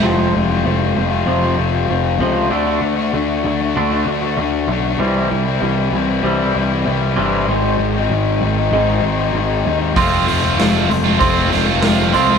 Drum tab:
HH |--------|--------|--------|--------|
SD |--------|--------|--------|--------|
BD |--------|--------|--------|--------|

HH |oooooooo|
SD |--o--oo-|
BD |o---o---|